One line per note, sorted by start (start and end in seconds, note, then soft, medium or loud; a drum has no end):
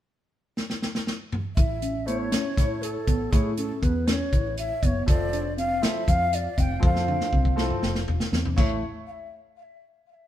0.57 snare medium
0.70 snare medium
0.82 snare medium
0.95 snare medium
1.07 snare medium
1.32 mid tom medium
1.56 2.34 A1 medium
1.56 1.79 E4 medium
1.56 2.08 E5 medium
1.56 kick loud
1.56 closed hi-hat medium
1.82 2.04 C#4 medium
1.82 closed hi-hat medium
2.06 2.42 A3 medium
2.06 2.29 B3 medium
2.06 2.42 E4 medium
2.06 2.22 C5 medium
2.06 2.43 C#5 medium
2.06 closed hi-hat medium
2.22 2.84 C#5 medium
2.32 2.54 C#4 medium
2.32 snare loud
2.32 closed hi-hat medium
2.57 2.96 A2 medium
2.57 2.92 A3 medium
2.57 2.93 E4 medium
2.57 3.01 E4 medium
2.57 2.93 C#5 medium
2.57 kick medium
2.57 snare soft
2.57 closed hi-hat medium
2.82 3.33 A4 medium
2.82 closed hi-hat medium
3.07 3.27 A1 medium
3.07 3.29 B3 medium
3.07 kick medium
3.07 closed hi-hat medium
3.31 3.71 A2 medium
3.31 3.50 A3 medium
3.31 3.50 E4 medium
3.31 3.54 E4 medium
3.31 3.57 G#4 medium
3.31 3.50 C#5 medium
3.31 kick loud
3.31 closed hi-hat medium
3.57 3.79 C#4 medium
3.57 3.85 A4 medium
3.57 closed hi-hat medium
3.82 4.21 E2 medium
3.82 4.04 B3 medium
3.82 4.09 B4 medium
3.82 kick medium
3.82 closed hi-hat medium
4.07 4.29 C#4 medium
4.07 4.13 D5 medium
4.07 snare loud
4.07 closed hi-hat medium
4.12 4.57 C#5 medium
4.32 4.71 A1 medium
4.32 4.76 E4 medium
4.32 kick medium
4.32 closed hi-hat medium
4.57 4.84 E5 medium
4.57 closed hi-hat medium
4.82 5.02 F#1 medium
4.82 5.04 B3 medium
4.82 5.06 C#5 medium
4.82 4.87 D5 medium
4.82 kick medium
4.82 closed hi-hat medium
5.06 5.84 F1 medium
5.06 5.42 F3 medium
5.06 5.42 C4 medium
5.06 5.29 F4 medium
5.06 5.43 A4 medium
5.06 5.54 D5 loud
5.06 kick loud
5.06 closed hi-hat medium
5.33 5.54 D4 medium
5.33 closed hi-hat medium
5.57 5.79 C4 medium
5.57 5.84 F5 medium
5.57 closed hi-hat medium
5.81 5.99 F3 medium
5.81 6.00 C4 medium
5.81 6.04 E4 medium
5.81 6.00 A4 medium
5.81 6.10 E5 loud
5.81 snare loud
5.81 closed hi-hat medium
6.08 6.46 F2 medium
6.08 6.51 F4 medium
6.08 6.36 F5 loud
6.08 kick medium
6.08 closed hi-hat medium
6.33 6.61 D5 medium
6.33 closed hi-hat medium
6.58 6.77 F1 medium
6.58 6.79 C4 medium
6.58 6.83 G5 loud
6.58 kick medium
6.58 closed hi-hat medium
6.79 7.21 F2 loud
6.79 7.51 F3 medium
6.79 7.51 C4 medium
6.79 7.04 F4 medium
6.79 7.52 A4 medium
6.79 kick loud
6.79 high tom medium
6.85 7.55 F5 medium
6.96 snare medium
7.08 7.29 D4 medium
7.08 high tom medium
7.21 snare medium
7.33 7.71 C2 medium
7.33 7.54 C4 medium
7.33 kick medium
7.45 kick medium
7.56 7.92 F3 medium
7.56 7.92 C4 medium
7.56 7.79 E4 medium
7.56 7.92 A4 medium
7.56 snare medium
7.70 mid tom medium
7.82 8.21 F1 medium
7.82 8.25 F4 medium
7.82 snare medium
7.95 snare medium
8.08 floor tom medium
8.20 snare medium
8.32 8.52 E2 medium
8.32 8.54 C4 medium
8.32 snare medium
8.45 floor tom medium
8.56 8.81 A1 medium
8.56 8.80 A3 medium
8.56 8.81 A3 medium
8.56 8.81 E4 medium
8.56 8.80 C#5 medium
8.56 8.80 E5 medium
8.56 8.61 F5 medium
8.56 kick loud
8.56 crash medium